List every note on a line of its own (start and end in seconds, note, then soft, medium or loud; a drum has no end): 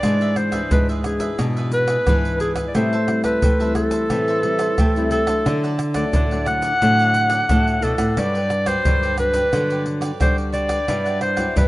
0.00 0.68 G#2 medium
0.00 0.32 E3 medium
0.00 0.61 G#3 loud
0.00 0.32 B3 medium
0.00 0.19 D4 soft
0.00 0.39 D5 loud
0.00 pandeiro medium
0.00 tamborim medium
0.00 shaker medium
0.00 surdo medium
0.04 0.32 D4 medium
0.04 0.20 G#4 medium
0.04 0.20 B4 medium
0.04 0.20 E5 medium
0.21 0.36 G#4 medium
0.21 0.37 B4 medium
0.21 0.37 E5 medium
0.21 pandeiro soft
0.21 shaker soft
0.36 0.49 E3 medium
0.36 0.49 B3 medium
0.36 0.49 D4 medium
0.36 0.71 C5 medium
0.36 muted cavaquinho stroke soft
0.36 pandeiro medium
0.36 tamborim medium
0.36 shaker medium
0.52 0.99 E3 medium
0.52 0.99 B3 medium
0.52 0.99 D4 medium
0.52 0.70 G#4 medium
0.52 0.70 B4 medium
0.52 0.69 E5 medium
0.52 pandeiro medium
0.52 tamborim medium
0.52 shaker medium
0.52 surdo soft
0.71 1.36 G#2 medium
0.71 1.29 G#3 loud
0.71 0.87 D4 soft
0.71 0.88 G#4 medium
0.71 0.87 B4 medium
0.71 0.88 B4 soft
0.71 0.88 E5 soft
0.71 pandeiro medium
0.71 shaker medium
0.71 surdo loud
0.89 1.21 G#4 medium
0.89 1.20 B4 medium
0.89 1.19 E5 medium
0.89 pandeiro soft
0.89 shaker soft
1.04 1.33 E3 medium
1.04 1.33 B3 medium
1.04 1.33 D4 medium
1.04 1.43 G#4 medium
1.04 pandeiro medium
1.04 tamborim medium
1.04 shaker medium
1.04 surdo soft
1.20 1.38 G#4 medium
1.20 1.38 B4 medium
1.20 1.37 E5 medium
1.20 pandeiro medium
1.20 shaker medium
1.20 surdo soft
1.38 2.04 G#2 medium
1.38 1.96 B2 loud
1.38 1.83 E3 medium
1.38 1.83 B3 medium
1.38 1.55 D4 medium
1.38 1.83 D4 medium
1.38 1.55 G#4 medium
1.38 1.56 B4 medium
1.38 1.55 E5 medium
1.38 pandeiro medium
1.38 tamborim medium
1.38 shaker medium
1.38 surdo medium
1.56 1.71 G#4 medium
1.56 1.72 B4 medium
1.56 1.72 E5 medium
1.56 pandeiro soft
1.56 shaker soft
1.72 2.37 B4 loud
1.72 muted cavaquinho stroke soft
1.72 pandeiro medium
1.72 shaker medium
1.87 2.05 G#4 medium
1.87 2.05 B4 medium
1.87 2.04 E5 medium
1.87 pandeiro medium
1.87 tamborim medium
1.87 shaker medium
2.06 2.71 G#2 medium
2.06 2.65 E3 medium
2.06 2.51 E3 medium
2.06 2.51 B3 medium
2.06 2.38 D4 medium
2.06 2.51 D4 medium
2.06 2.39 G#4 medium
2.06 2.40 B4 medium
2.06 2.41 E5 medium
2.06 pandeiro medium
2.06 tamborim medium
2.06 shaker medium
2.06 surdo loud
2.25 pandeiro soft
2.25 shaker soft
2.40 2.56 D4 medium
2.40 2.53 G#4 medium
2.40 2.56 G#4 soft
2.40 2.55 B4 medium
2.40 2.54 E5 soft
2.40 pandeiro medium
2.40 shaker medium
2.40 surdo soft
2.55 2.73 G#4 medium
2.55 2.73 B4 medium
2.55 2.72 E5 medium
2.55 pandeiro medium
2.55 tamborim medium
2.55 shaker medium
2.55 surdo soft
2.67 2.77 D5 medium
2.75 3.39 A2 medium
2.75 2.95 G3 medium
2.75 3.32 A3 loud
2.75 2.95 C4 medium
2.75 2.95 E4 medium
2.75 2.90 G4 medium
2.75 3.24 C5 loud
2.75 2.91 C5 medium
2.75 2.91 E5 medium
2.75 2.92 A5 medium
2.75 pandeiro medium
2.75 tamborim medium
2.75 shaker medium
2.75 surdo medium
2.93 3.08 C5 medium
2.93 3.08 E5 medium
2.93 3.08 A5 medium
2.93 pandeiro soft
2.93 shaker soft
3.07 3.40 G3 medium
3.07 3.40 C4 medium
3.07 3.40 E4 medium
3.07 muted cavaquinho stroke soft
3.07 pandeiro medium
3.07 tamborim medium
3.24 3.72 B4 medium
3.24 3.41 C5 medium
3.24 3.41 E5 medium
3.24 3.40 A5 medium
3.24 pandeiro medium
3.24 tamborim medium
3.24 shaker medium
3.24 surdo soft
3.42 4.07 E3 medium
3.42 4.00 A3 medium
3.42 3.58 G4 soft
3.42 3.59 C5 soft
3.42 3.59 E5 medium
3.42 3.59 A5 medium
3.42 pandeiro medium
3.42 shaker medium
3.42 surdo loud
3.60 4.05 G3 medium
3.60 4.06 C4 medium
3.60 4.06 E4 medium
3.60 3.92 C5 medium
3.60 3.91 E5 medium
3.60 3.90 A5 medium
3.60 pandeiro soft
3.60 shaker soft
3.75 5.08 A4 loud
3.75 pandeiro medium
3.75 tamborim medium
3.75 shaker medium
3.75 surdo soft
3.91 4.09 C5 medium
3.91 4.08 E5 medium
3.91 4.08 A5 medium
3.91 pandeiro medium
3.91 shaker medium
3.91 surdo soft
4.10 4.75 A2 medium
4.10 4.68 E3 medium
4.10 4.39 G3 medium
4.10 4.39 C4 medium
4.10 4.39 E4 medium
4.10 4.26 G4 soft
4.10 4.26 C5 medium
4.10 4.26 E5 medium
4.10 4.27 A5 medium
4.10 pandeiro medium
4.10 tamborim medium
4.10 shaker medium
4.10 surdo medium
4.28 4.42 C5 medium
4.28 4.43 E5 medium
4.28 4.43 A5 medium
4.28 pandeiro soft
4.28 shaker soft
4.43 4.76 G3 medium
4.43 4.76 C4 medium
4.43 4.76 E4 medium
4.43 muted cavaquinho stroke soft
4.43 pandeiro medium
4.59 4.77 C5 medium
4.59 4.76 E5 medium
4.59 4.76 A5 medium
4.59 pandeiro medium
4.59 tamborim medium
4.59 shaker medium
4.78 5.43 E3 medium
4.78 5.36 A3 medium
4.78 5.10 G4 medium
4.78 5.11 C5 medium
4.78 5.11 E5 medium
4.78 5.12 A5 medium
4.78 pandeiro medium
4.78 tamborim medium
4.78 shaker medium
4.78 surdo loud
4.96 5.24 G3 medium
4.96 5.25 C4 medium
4.96 5.25 E4 medium
4.96 pandeiro soft
4.96 shaker soft
5.11 5.27 G4 soft
5.11 5.66 A4 loud
5.11 5.28 C5 soft
5.11 5.27 E5 medium
5.11 5.25 A5 soft
5.11 pandeiro medium
5.11 shaker medium
5.27 5.74 F#3 medium
5.27 5.74 A3 medium
5.27 5.74 D4 medium
5.27 5.45 C5 medium
5.27 5.44 E5 medium
5.27 5.43 A5 medium
5.27 pandeiro medium
5.27 tamborim medium
5.27 shaker medium
5.27 surdo soft
5.46 6.04 D3 loud
5.46 6.11 D3 medium
5.46 5.61 D4 medium
5.46 5.62 A4 medium
5.46 5.62 D5 medium
5.46 5.62 F#5 medium
5.46 pandeiro medium
5.46 tamborim medium
5.46 shaker medium
5.46 surdo medium
5.64 5.78 A4 medium
5.64 5.78 D5 medium
5.64 5.79 F#5 medium
5.64 pandeiro soft
5.64 shaker soft
5.79 muted cavaquinho stroke soft
5.79 pandeiro medium
5.79 tamborim medium
5.79 shaker medium
5.94 6.24 F#3 medium
5.94 6.25 A3 medium
5.94 6.25 D4 medium
5.94 6.13 A4 medium
5.94 6.43 D5 medium
5.94 6.12 D5 medium
5.94 6.11 F#5 medium
5.94 pandeiro medium
5.94 tamborim medium
5.94 shaker medium
5.94 surdo soft
6.13 6.79 A2 medium
6.13 6.72 D3 medium
6.13 6.29 D4 soft
6.13 6.30 A4 soft
6.13 6.30 D5 medium
6.13 6.31 F#5 medium
6.13 pandeiro medium
6.13 shaker medium
6.13 surdo loud
6.31 6.43 F#3 medium
6.31 6.43 A3 medium
6.31 6.43 D4 medium
6.31 6.64 A4 medium
6.31 6.63 D5 medium
6.31 6.62 F#5 medium
6.31 pandeiro soft
6.31 shaker soft
6.46 6.67 F#3 medium
6.46 6.68 A3 medium
6.46 6.68 D4 medium
6.46 7.85 F#5 loud
6.46 pandeiro medium
6.46 tamborim medium
6.46 shaker medium
6.46 surdo soft
6.62 6.80 A4 medium
6.62 6.80 D5 medium
6.62 6.79 F#5 medium
6.62 pandeiro medium
6.62 shaker medium
6.62 surdo soft
6.82 7.39 A2 medium
6.82 7.46 D3 medium
6.82 7.44 F#3 medium
6.82 7.45 A3 medium
6.82 6.97 D4 medium
6.82 7.45 D4 medium
6.82 6.98 A4 medium
6.82 6.98 D5 medium
6.82 6.98 F#5 medium
6.82 pandeiro medium
6.82 tamborim medium
6.82 shaker medium
6.82 surdo medium
6.99 7.15 A4 medium
6.99 7.15 D5 medium
6.99 7.15 F#5 medium
6.99 pandeiro soft
6.99 shaker soft
7.14 muted cavaquinho stroke soft
7.14 pandeiro medium
7.14 shaker medium
7.30 7.48 A4 medium
7.30 7.48 D5 medium
7.30 7.47 F#5 medium
7.30 pandeiro medium
7.30 tamborim medium
7.30 shaker medium
7.49 7.78 A2 medium
7.49 8.14 A2 medium
7.49 7.93 F#3 medium
7.49 7.93 A3 medium
7.49 7.81 D4 medium
7.49 7.94 D4 medium
7.49 7.82 A4 medium
7.49 7.83 D5 medium
7.49 7.83 F#5 medium
7.49 pandeiro medium
7.49 tamborim medium
7.49 shaker medium
7.49 surdo loud
7.67 pandeiro soft
7.67 shaker soft
7.82 7.98 B2 medium
7.82 7.99 D4 soft
7.82 7.99 A4 soft
7.82 8.21 A4 medium
7.82 7.99 D5 soft
7.82 7.97 F#5 medium
7.82 pandeiro medium
7.82 shaker medium
7.82 surdo soft
7.98 8.14 A2 medium
7.98 8.16 A4 medium
7.98 8.16 D5 medium
7.98 8.15 F#5 medium
7.98 pandeiro medium
7.98 tamborim medium
7.98 shaker medium
7.98 surdo soft
8.17 8.82 G2 medium
8.17 8.75 G2 loud
8.17 8.49 F#3 medium
8.17 8.49 B3 medium
8.17 8.49 D4 medium
8.17 8.33 F#4 medium
8.17 8.33 G4 medium
8.17 8.34 B4 medium
8.17 8.69 D5 loud
8.17 8.34 D5 medium
8.17 pandeiro medium
8.17 tamborim medium
8.17 shaker medium
8.17 surdo medium
8.35 8.50 G4 medium
8.35 8.50 B4 medium
8.35 8.50 D5 medium
8.35 pandeiro soft
8.35 shaker soft
8.50 muted cavaquinho stroke soft
8.50 pandeiro medium
8.50 tamborim medium
8.50 shaker medium
8.66 9.13 F#3 medium
8.66 9.13 D4 medium
8.66 8.84 G4 medium
8.66 8.83 B4 medium
8.66 9.19 C5 loud
8.66 8.83 D5 medium
8.66 pandeiro medium
8.66 tamborim medium
8.66 shaker medium
8.66 surdo soft
8.85 9.43 G2 medium
8.85 9.50 D3 medium
8.85 9.01 F#4 soft
8.85 9.01 G4 medium
8.85 9.02 B4 medium
8.85 9.02 D5 medium
8.85 pandeiro medium
8.85 shaker medium
8.85 surdo loud
9.03 9.35 G4 medium
9.03 9.34 B4 medium
9.03 9.33 D5 medium
9.03 pandeiro soft
9.03 shaker soft
9.18 9.47 F#3 medium
9.18 9.47 B3 medium
9.18 9.48 D4 medium
9.18 9.90 B4 loud
9.18 pandeiro medium
9.18 tamborim medium
9.18 shaker medium
9.18 surdo soft
9.34 9.52 G4 medium
9.34 9.51 B4 medium
9.34 9.51 D5 medium
9.34 pandeiro medium
9.34 shaker medium
9.34 surdo soft
9.53 10.18 G2 medium
9.53 10.10 D3 medium
9.53 10.16 F#3 medium
9.53 10.16 B3 medium
9.53 10.16 D4 medium
9.53 9.69 F#4 soft
9.53 9.69 G4 soft
9.53 9.69 B4 soft
9.53 9.69 D5 medium
9.53 pandeiro medium
9.53 tamborim medium
9.53 shaker medium
9.53 surdo medium
9.70 9.85 G4 medium
9.70 9.85 B4 medium
9.70 9.86 D5 medium
9.70 pandeiro soft
9.70 shaker soft
9.86 muted cavaquinho stroke soft
9.86 pandeiro medium
10.01 10.19 G4 medium
10.01 10.19 B4 medium
10.01 10.18 D5 medium
10.01 pandeiro medium
10.01 tamborim medium
10.01 shaker medium
10.20 10.85 D3 medium
10.20 10.78 G3 medium
10.20 10.84 D4 medium
10.20 10.51 F#4 medium
10.20 10.52 G4 medium
10.20 10.36 C5 loud
10.20 10.53 D5 medium
10.20 pandeiro medium
10.20 tamborim medium
10.20 shaker medium
10.20 surdo loud
10.38 pandeiro soft
10.38 shaker soft
10.52 10.69 F#4 medium
10.52 10.70 G4 medium
10.52 10.69 B4 medium
10.52 11.18 D5 loud
10.52 10.67 D5 medium
10.52 pandeiro medium
10.52 shaker medium
10.69 10.87 G4 medium
10.69 10.86 B4 medium
10.69 10.86 D5 medium
10.69 pandeiro medium
10.69 tamborim medium
10.69 shaker medium
10.69 surdo soft
10.88 11.46 G2 loud
10.88 11.53 G2 medium
10.88 11.20 F#3 medium
10.88 11.21 B3 medium
10.88 11.04 E4 soft
10.88 11.21 E4 medium
10.88 11.05 G4 medium
10.88 11.05 B4 medium
10.88 11.04 F#5 medium
10.88 pandeiro medium
10.88 tamborim medium
10.88 shaker medium
10.88 surdo medium
11.06 11.20 G4 medium
11.06 11.20 B4 medium
11.06 11.21 F#5 medium
11.06 pandeiro soft
11.06 shaker soft
11.21 11.54 C5 loud
11.21 muted cavaquinho stroke soft
11.21 pandeiro medium
11.21 tamborim medium
11.36 11.68 F#3 medium
11.36 11.68 B3 medium
11.36 11.68 E4 medium
11.36 11.55 G4 medium
11.36 11.54 B4 medium
11.36 11.53 F#5 medium
11.36 pandeiro medium
11.36 tamborim medium
11.36 shaker medium
11.36 surdo soft
11.56 11.68 G2 medium
11.56 11.68 E4 medium
11.56 11.68 G4 medium
11.56 11.68 B4 medium
11.56 11.68 F#5 medium
11.56 pandeiro medium
11.56 shaker medium
11.56 surdo loud